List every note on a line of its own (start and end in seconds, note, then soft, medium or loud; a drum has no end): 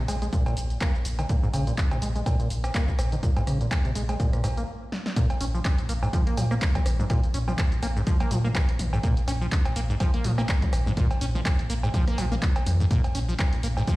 0.08 0.29 A#1 medium
0.08 0.16 G#3 medium
0.08 open hi-hat loud
0.08 cowbell medium
0.08 shaker medium
0.22 0.28 G#3 medium
0.22 closed hi-hat soft
0.22 shaker soft
0.32 0.44 A#2 medium
0.32 kick loud
0.32 closed hi-hat medium
0.32 shaker soft
0.46 0.55 A#2 medium
0.46 closed hi-hat soft
0.46 cowbell medium
0.46 shaker soft
0.57 0.77 A#1 medium
0.57 open hi-hat loud
0.57 shaker medium
0.70 closed hi-hat soft
0.70 shaker soft
0.81 0.92 A#3 medium
0.81 kick loud
0.81 clap loud
0.81 closed hi-hat medium
0.81 cowbell medium
0.81 shaker soft
0.95 shaker soft
1.05 1.26 A#1 loud
1.05 open hi-hat loud
1.05 shaker medium
1.19 1.22 D#3 medium
1.19 closed hi-hat medium
1.19 cowbell medium
1.19 shaker soft
1.29 1.37 A#2 medium
1.29 kick loud
1.29 closed hi-hat medium
1.29 shaker soft
1.43 1.49 G#2 loud
1.43 shaker soft
1.53 1.74 A#1 medium
1.53 1.65 C#3 medium
1.53 open hi-hat loud
1.53 cowbell medium
1.53 shaker medium
1.67 1.73 A#2 medium
1.67 closed hi-hat medium
1.67 shaker soft
1.78 kick loud
1.78 clap loud
1.78 closed hi-hat medium
1.78 shaker soft
1.91 2.00 A#1 medium
1.91 1.97 C3 medium
1.91 closed hi-hat soft
1.91 cowbell medium
1.91 shaker soft
2.02 2.22 A#1 medium
2.02 2.09 G#3 medium
2.02 open hi-hat loud
2.02 shaker medium
2.16 2.21 G#3 medium
2.16 closed hi-hat medium
2.16 shaker soft
2.26 2.37 A#2 medium
2.26 kick loud
2.26 closed hi-hat medium
2.26 cowbell medium
2.26 shaker soft
2.40 2.48 A#2 medium
2.40 closed hi-hat soft
2.40 shaker soft
2.50 2.71 A#1 medium
2.50 open hi-hat loud
2.50 shaker medium
2.64 cross-stick medium
2.64 closed hi-hat medium
2.64 cowbell medium
2.64 shaker soft
2.74 2.86 A#3 medium
2.74 kick loud
2.74 clap loud
2.74 closed hi-hat medium
2.74 shaker soft
2.88 kick medium
2.88 shaker soft
2.99 3.19 A#1 loud
2.99 cross-stick medium
2.99 open hi-hat loud
2.99 cowbell medium
2.99 shaker medium
3.12 3.16 D#3 medium
3.12 closed hi-hat medium
3.12 shaker soft
3.23 3.30 A#2 medium
3.23 kick loud
3.23 closed hi-hat medium
3.23 shaker soft
3.36 3.42 G#2 loud
3.36 closed hi-hat soft
3.36 cowbell medium
3.36 shaker soft
3.47 3.67 A#1 medium
3.47 3.58 C#3 medium
3.47 cross-stick medium
3.47 open hi-hat loud
3.47 shaker medium
3.61 3.67 A#2 medium
3.61 closed hi-hat medium
3.61 shaker soft
3.71 kick loud
3.71 clap loud
3.71 closed hi-hat medium
3.71 cowbell medium
3.71 shaker soft
3.85 3.94 A#1 loud
3.85 3.91 C3 medium
3.85 closed hi-hat soft
3.85 shaker soft
3.95 4.16 A#1 medium
3.95 4.03 G#3 medium
3.95 open hi-hat loud
3.95 shaker medium
4.09 4.15 G#3 medium
4.09 closed hi-hat medium
4.09 cowbell medium
4.09 shaker soft
4.20 4.31 A#2 medium
4.20 kick loud
4.20 closed hi-hat medium
4.20 shaker soft
4.33 4.42 A#2 medium
4.33 cross-stick medium
4.33 closed hi-hat soft
4.33 shaker soft
4.44 4.64 A#1 medium
4.44 4.48 G#2 medium
4.44 cross-stick medium
4.44 open hi-hat loud
4.44 cowbell medium
4.44 shaker medium
4.57 4.63 A#3 medium
4.57 closed hi-hat medium
4.57 shaker soft
4.92 snare medium
5.06 snare medium
5.16 5.28 A#2 loud
5.16 kick loud
5.16 closed hi-hat medium
5.16 shaker soft
5.30 closed hi-hat medium
5.30 cowbell medium
5.30 shaker soft
5.41 5.61 A#1 medium
5.41 5.45 C#4 medium
5.41 open hi-hat loud
5.41 shaker medium
5.54 5.60 F3 medium
5.54 shaker soft
5.65 kick loud
5.65 clap loud
5.65 closed hi-hat medium
5.65 cowbell medium
5.65 shaker soft
5.78 5.87 A#1 medium
5.78 closed hi-hat soft
5.78 shaker soft
5.89 6.09 A#1 medium
5.89 5.93 A#3 medium
5.89 open hi-hat loud
5.89 shaker medium
6.02 6.08 G#2 medium
6.02 cowbell medium
6.02 shaker soft
6.13 6.24 F3 loud
6.13 kick loud
6.13 closed hi-hat medium
6.13 shaker soft
6.27 6.39 A#3 medium
6.27 closed hi-hat medium
6.27 shaker soft
6.37 6.58 A#2 medium
6.37 6.45 F3 medium
6.37 open hi-hat loud
6.37 cowbell medium
6.37 shaker medium
6.51 6.54 A#3 loud
6.51 cross-stick medium
6.51 shaker soft
6.62 kick loud
6.62 clap loud
6.62 closed hi-hat medium
6.62 shaker soft
6.75 kick medium
6.75 closed hi-hat medium
6.75 mid tom medium
6.75 cowbell medium
6.75 shaker soft
6.86 7.06 A#1 medium
6.86 cross-stick medium
6.86 open hi-hat loud
6.86 shaker medium
6.99 7.05 G#2 medium
6.99 mid tom medium
6.99 shaker soft
7.10 7.21 A#2 loud
7.10 kick loud
7.10 closed hi-hat medium
7.10 cowbell medium
7.10 shaker soft
7.23 closed hi-hat medium
7.23 shaker soft
7.34 7.55 A#1 medium
7.34 7.39 C#4 medium
7.34 open hi-hat loud
7.34 shaker medium
7.48 7.54 F3 medium
7.48 mid tom medium
7.48 cowbell medium
7.48 shaker soft
7.58 kick loud
7.58 clap loud
7.58 closed hi-hat medium
7.58 shaker soft
7.72 7.81 A#1 loud
7.72 closed hi-hat soft
7.72 shaker soft
7.82 8.03 A#1 medium
7.82 7.87 A#3 medium
7.82 open hi-hat loud
7.82 cowbell medium
7.82 shaker medium
7.96 8.02 G#2 medium
7.96 shaker soft
8.06 8.18 F3 loud
8.06 kick loud
8.06 closed hi-hat medium
8.06 shaker soft
8.20 8.32 A#3 medium
8.20 closed hi-hat medium
8.20 cowbell medium
8.20 shaker soft
8.31 8.51 A#2 loud
8.31 8.38 F3 medium
8.31 open hi-hat loud
8.31 shaker medium
8.44 8.48 A#3 loud
8.44 mid tom medium
8.44 shaker soft
8.55 kick loud
8.55 clap loud
8.55 closed hi-hat medium
8.55 cowbell medium
8.55 shaker soft
8.69 closed hi-hat medium
8.69 shaker soft
8.79 9.00 A#1 medium
8.79 open hi-hat loud
8.79 mid tom loud
8.79 shaker medium
8.93 8.99 G#2 medium
8.93 cowbell medium
8.93 shaker soft
9.03 9.15 A#2 loud
9.03 kick loud
9.03 closed hi-hat medium
9.03 shaker soft
9.17 closed hi-hat medium
9.17 shaker soft
9.28 9.48 A#1 medium
9.28 9.32 C#4 medium
9.28 open hi-hat loud
9.28 cowbell medium
9.28 shaker medium
9.41 9.47 F3 medium
9.41 shaker soft
9.52 kick loud
9.52 clap loud
9.52 closed hi-hat medium
9.52 shaker soft
9.65 9.74 A#1 loud
9.65 closed hi-hat soft
9.65 cowbell medium
9.65 shaker soft
9.76 9.96 A#1 medium
9.76 9.81 A#3 medium
9.76 open hi-hat loud
9.76 shaker medium
9.90 9.96 G#2 medium
9.90 shaker soft
10.00 10.12 F3 loud
10.00 kick loud
10.00 closed hi-hat medium
10.00 cowbell medium
10.00 shaker soft
10.14 10.26 A#3 medium
10.14 closed hi-hat medium
10.14 shaker soft
10.24 10.45 A#2 medium
10.24 10.32 F3 medium
10.24 open hi-hat loud
10.24 shaker medium
10.38 10.42 A#3 loud
10.38 cross-stick medium
10.38 cowbell medium
10.38 shaker soft
10.49 kick loud
10.49 clap loud
10.49 closed hi-hat medium
10.49 shaker soft
10.62 kick medium
10.62 closed hi-hat medium
10.62 mid tom medium
10.62 shaker soft
10.73 10.93 A#1 medium
10.73 cross-stick medium
10.73 open hi-hat loud
10.73 cowbell medium
10.73 shaker medium
10.86 10.92 G#2 medium
10.86 mid tom medium
10.86 shaker soft
10.97 11.08 A#2 medium
10.97 kick loud
10.97 closed hi-hat medium
10.97 shaker soft
11.11 closed hi-hat soft
11.11 cowbell medium
11.11 shaker soft
11.21 11.42 A#1 medium
11.21 11.26 C#4 medium
11.21 open hi-hat loud
11.21 shaker medium
11.35 11.41 F3 medium
11.35 mid tom medium
11.35 shaker soft
11.46 kick loud
11.46 clap loud
11.46 closed hi-hat medium
11.46 cowbell medium
11.46 shaker soft
11.59 11.68 A#1 medium
11.59 closed hi-hat soft
11.59 shaker soft
11.70 11.90 A#1 medium
11.70 11.74 A#3 medium
11.70 open hi-hat loud
11.70 shaker medium
11.83 11.89 G#2 medium
11.83 cowbell medium
11.83 shaker soft
11.94 12.05 F3 loud
11.94 kick loud
11.94 closed hi-hat medium
11.94 shaker soft
12.08 12.20 A#3 medium
12.08 cross-stick medium
12.08 closed hi-hat soft
12.08 shaker soft
12.18 12.38 A#1 medium
12.18 12.26 F3 medium
12.18 open hi-hat loud
12.18 cowbell medium
12.18 shaker medium
12.32 12.35 A#3 loud
12.32 mid tom medium
12.32 shaker soft
12.42 kick loud
12.42 clap loud
12.42 closed hi-hat medium
12.42 shaker soft
12.56 closed hi-hat medium
12.56 cowbell medium
12.56 shaker soft
12.66 12.87 F2 medium
12.66 open hi-hat loud
12.66 mid tom loud
12.66 shaker medium
12.80 12.86 G#2 medium
12.80 shaker soft
12.91 13.02 A#2 medium
12.91 kick loud
12.91 closed hi-hat medium
12.91 shaker soft
13.04 closed hi-hat medium
13.04 cowbell medium
13.04 shaker soft
13.15 13.35 A#1 medium
13.15 13.19 C#4 medium
13.15 open hi-hat loud
13.15 shaker medium
13.29 13.34 F3 medium
13.29 shaker soft
13.39 kick loud
13.39 clap loud
13.39 closed hi-hat medium
13.39 cowbell medium
13.39 shaker soft
13.53 13.61 A#1 loud
13.53 closed hi-hat soft
13.53 shaker soft
13.63 13.84 A#1 medium
13.63 13.68 A#3 medium
13.63 open hi-hat loud
13.63 shaker medium
13.77 13.83 G#2 medium
13.77 cowbell medium
13.77 shaker soft
13.87 13.96 F3 loud
13.87 kick loud
13.87 closed hi-hat medium
13.87 shaker soft